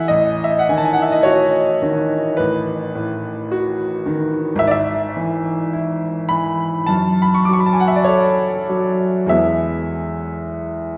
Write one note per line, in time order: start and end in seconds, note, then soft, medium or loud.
0.00 0.12 E3 soft
0.00 0.12 A4 soft
0.00 0.12 E5 medium
0.00 0.13 F#5 medium
0.00 0.12 G#5 medium
0.08 2.36 A1 medium
0.08 0.44 D#5 medium
0.44 0.60 E5 medium
0.59 0.71 F#5 medium
0.69 1.61 D#3 soft
0.69 0.79 G#5 medium
0.78 0.87 A5 medium
0.85 0.95 G#5 medium
0.93 1.03 F#5 medium
1.02 1.14 E5 medium
1.12 1.25 D#5 medium
1.23 2.17 F#4 medium
1.23 2.38 C#5 medium
1.82 2.73 D#3 medium
2.37 4.58 A1 soft
2.37 4.06 B4 medium
2.95 3.85 A2 soft
3.51 4.40 F#4 medium
4.06 4.61 D#3 medium
4.55 6.82 G#1 medium
4.55 4.67 E5 loud
4.67 4.74 D5 medium
4.67 6.29 E5 medium
5.17 6.08 E3 soft
5.73 6.66 E4 medium
6.29 6.89 E3 soft
6.29 6.88 B5 medium
6.87 9.28 F#2 medium
6.87 7.23 A5 medium
7.22 7.36 B5 medium
7.34 7.45 C#6 medium
7.45 8.45 F#3 soft
7.45 7.54 D6 medium
7.53 7.61 C#6 medium
7.60 7.67 B5 medium
7.66 7.74 A5 medium
7.73 7.81 G#5 medium
7.80 7.89 F#5 medium
7.88 7.97 E5 medium
7.96 8.06 D5 medium
8.04 9.07 A4 soft
8.04 9.31 C#5 medium
8.69 9.32 F#3 soft
9.26 10.97 E2 soft
9.26 10.97 G#3 soft
9.26 10.97 B3 soft
9.26 10.97 E4 soft
9.26 10.97 E5 medium